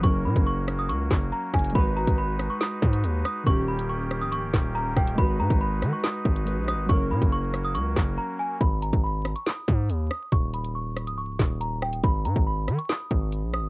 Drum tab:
HH |x-----x-----x---x-----------xxxx|x-----x-----x---x-----x-x---x---|x-----x-----x---x-----------x-x-|x-----x-----x---x-----x-x---x---|
CP |--------------------x-----------|----------------x---------------|--------------------x-----------|----------------x---------------|
SD |------------r-------o-------r---|------------r---o-----------r---|------------r-------o-------r---|------------r---o-----------r---|
BD |o-----o-------------o-------o---|o-----o-------------o-----------|o-------------------o-------o---|o-----o-------------o-----------|

HH |x-----x-----x---x---------------|x---x-x-----x-x---------x-------|x---x-x-----x-x---------x-----x-|x---x-x-----x-x---------x-------|
CP |--------------------x-----------|----------------x---------------|--------------------x-----------|----------------x---------------|
SD |------------r-------o-----------|------------r---o-----------r---|------------r-------o-------r---|------------r---o-----------r---|
BD |o-----o-------------o-----------|o-----o-------------o-----------|o-------------------o-----------|o-----o-------------o-----------|